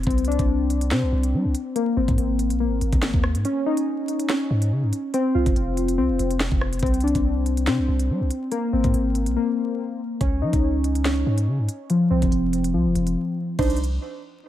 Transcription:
0.03 0.38 C2 loud
0.03 0.90 C4 loud
0.03 kick loud
0.03 closed hi-hat medium
0.10 closed hi-hat medium
0.18 closed hi-hat medium
0.25 1.55 D4 medium
0.25 closed hi-hat medium
0.32 closed hi-hat medium
0.39 0.93 C2 loud
0.39 kick medium
0.39 closed hi-hat medium
0.70 closed hi-hat medium
0.81 closed hi-hat medium
0.91 1.04 C3 loud
0.91 1.76 C4 medium
0.91 snare loud
1.03 1.12 C2 loud
1.12 1.35 C2 loud
1.23 closed hi-hat medium
1.33 1.46 G3 loud
1.45 1.54 C2 loud
1.55 closed hi-hat loud
1.76 2.59 A#3 loud
1.76 closed hi-hat medium
1.97 2.08 G#1 loud
1.97 3.24 C4 medium
2.08 2.17 G#2 loud
2.08 kick medium
2.08 closed hi-hat medium
2.18 2.52 G#1 loud
2.18 closed hi-hat medium
2.39 closed hi-hat medium
2.50 2.67 A#1 loud
2.50 closed hi-hat medium
2.60 3.45 A#3 medium
2.66 2.81 G#1 medium
2.81 2.92 G#1 loud
2.81 closed hi-hat medium
2.93 3.13 G#1 loud
2.93 kick loud
2.93 closed hi-hat medium
3.03 snare loud
3.14 3.36 D#2 loud
3.14 kick medium
3.24 cross-stick loud
3.35 3.44 G#2 loud
3.35 closed hi-hat medium
3.45 4.28 C#4 loud
3.45 closed hi-hat medium
3.66 4.93 D#4 medium
3.77 closed hi-hat medium
4.08 closed hi-hat medium
4.19 closed hi-hat medium
4.29 5.14 C#4 medium
4.29 snare loud
4.51 4.73 G#2 loud
4.62 closed hi-hat medium
4.71 4.84 C#3 loud
4.83 4.92 G#2 loud
4.93 closed hi-hat loud
5.14 5.97 C4 loud
5.14 closed hi-hat medium
5.35 5.46 C2 loud
5.35 6.62 F4 medium
5.46 5.55 F1 loud
5.46 kick medium
5.46 closed hi-hat medium
5.56 6.00 F1 loud
5.56 closed hi-hat medium
5.77 closed hi-hat medium
5.88 closed hi-hat medium
5.98 6.11 C2 loud
5.98 6.81 C4 medium
6.09 6.19 F1 loud
6.19 6.50 F1 loud
6.19 closed hi-hat medium
6.31 closed hi-hat medium
6.40 snare loud
6.52 6.82 F1 loud
6.52 kick loud
6.61 cross-stick medium
6.73 closed hi-hat medium
6.79 7.14 C2 loud
6.79 7.66 C4 loud
6.79 kick loud
6.79 closed hi-hat medium
6.86 closed hi-hat medium
6.94 closed hi-hat medium
7.00 8.31 D4 medium
7.00 closed hi-hat medium
7.08 closed hi-hat medium
7.15 7.69 C2 loud
7.15 kick medium
7.15 closed hi-hat medium
7.46 closed hi-hat medium
7.57 closed hi-hat medium
7.67 7.80 C3 loud
7.67 8.52 C4 medium
7.67 snare loud
7.78 7.88 C2 loud
7.88 8.11 C2 loud
7.99 closed hi-hat medium
8.10 8.22 G3 medium
8.21 8.30 C2 loud
8.31 closed hi-hat loud
8.52 9.35 A#3 loud
8.52 closed hi-hat medium
8.73 8.84 G#1 loud
8.73 10.00 C4 medium
8.84 8.94 G#2 loud
8.84 kick medium
8.84 closed hi-hat medium
8.94 9.28 G#1 loud
8.94 closed hi-hat medium
9.15 closed hi-hat medium
9.26 9.36 A#1 loud
9.26 closed hi-hat medium
9.36 10.21 A#3 medium
10.21 10.43 C#2 loud
10.21 11.04 C#4 loud
10.21 kick loud
10.21 closed hi-hat medium
10.42 10.53 F3 loud
10.42 11.69 D#4 medium
10.53 11.24 C#2 loud
10.53 kick medium
10.53 closed hi-hat medium
10.84 closed hi-hat medium
10.95 closed hi-hat medium
11.05 11.90 C#4 medium
11.05 snare loud
11.26 11.49 G#2 loud
11.38 closed hi-hat medium
11.47 11.60 C#3 loud
11.59 11.68 G#2 loud
11.69 closed hi-hat loud
11.90 12.73 F3 medium
11.90 closed hi-hat medium
12.11 12.22 C2 loud
12.11 13.38 C4 medium
12.22 12.31 F1 loud
12.22 kick medium
12.22 closed hi-hat medium
12.32 12.76 F1 loud
12.32 closed hi-hat medium
12.53 closed hi-hat medium
12.64 closed hi-hat medium
12.74 12.87 C2 loud
12.74 13.59 F3 medium
12.85 12.95 F1 loud
12.95 13.16 F1 loud
12.95 closed hi-hat medium
13.07 closed hi-hat medium
13.59 13.98 C2 loud
13.59 13.78 D4 medium
13.59 13.78 D#4 medium
13.59 13.78 C5 loud
13.59 kick loud
13.59 closed hi-hat medium
13.59 crash medium
13.70 closed hi-hat medium
13.77 closed hi-hat medium
13.84 closed hi-hat medium

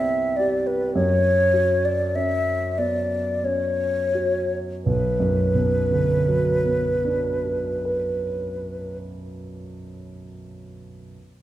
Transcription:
0.00 0.90 C2 medium
0.00 0.97 B3 soft
0.00 0.97 C4 medium
0.00 0.39 G4 soft
0.00 0.38 E5 medium
0.37 0.95 G4 soft
0.37 0.68 D5 medium
0.67 0.94 B4 medium
0.95 4.83 F#2 medium
0.95 1.87 C#5 medium
1.53 2.52 F#4 soft
1.85 2.17 D5 medium
2.15 3.17 C#4 soft
2.15 2.80 E5 medium
2.78 3.44 B3 soft
2.78 3.46 D5 medium
3.43 4.58 C#4 soft
3.43 4.58 C#5 medium
4.15 4.87 F#4 soft
4.84 9.00 B1 soft
4.84 8.98 B4 medium
5.20 9.33 F#2 soft
5.55 9.68 B2 soft
5.91 10.04 D3 soft
6.28 10.42 F#3 soft
6.64 10.42 B3 soft
7.05 10.43 D4 soft
7.45 10.43 F#4 soft
7.85 10.43 B4 soft

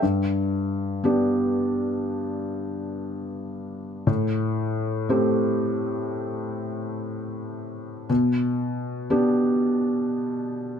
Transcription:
0.02 4.04 G2 soft
1.04 4.04 B3 soft
1.04 4.04 D4 soft
1.04 4.04 G4 soft
4.07 8.05 A2 medium
5.09 8.06 A3 soft
5.09 8.06 C4 soft
5.09 8.07 G4 soft
8.09 10.80 B2 medium
9.10 10.80 B3 soft
9.10 10.80 D4 soft
9.10 10.80 G4 medium

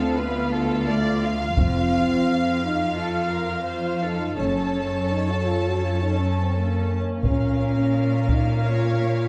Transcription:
0.00 1.53 D2 soft
0.00 0.18 C4 medium
0.00 4.35 F4 soft
0.00 0.16 A4 soft
0.00 1.53 F5 soft
0.17 0.87 B3 medium
0.17 0.53 B4 soft
0.52 0.87 A4 medium
0.88 1.40 A3 medium
0.88 1.23 D5 medium
1.23 2.97 F5 medium
1.57 2.23 F1 soft
1.57 4.35 F2 soft
1.57 2.59 C4 medium
1.57 4.35 F5 soft
1.57 taiko soft
2.64 2.97 D#4 medium
2.97 4.04 F4 soft
2.97 3.32 A4 soft
3.30 3.67 A#4 soft
3.66 4.02 C5 soft
4.03 4.39 D#4 soft
4.03 4.35 A4 soft
4.37 5.07 F#1 soft
4.37 7.00 F#2 soft
4.37 5.10 C#4 soft
4.37 9.28 C#4 soft
4.37 6.83 A4 soft
4.37 7.00 C#5 soft
4.37 7.01 A5 soft
5.11 5.29 D#4 soft
5.29 5.47 F#4 soft
5.46 5.64 F4 soft
5.67 5.83 F#4 soft
5.84 6.01 F4 soft
6.02 6.19 D#4 soft
6.19 6.35 C#4 soft
6.40 6.55 C4 soft
6.56 7.24 A#3 soft
7.23 7.91 A#1 soft
7.23 9.28 A#2 soft
7.23 8.31 C#4 medium
7.23 9.28 A#4 soft
7.23 9.28 F5 soft
7.23 taiko soft
8.29 8.66 D#4 soft
8.29 taiko soft
8.64 9.28 F4 medium
8.64 9.28 C#5 soft

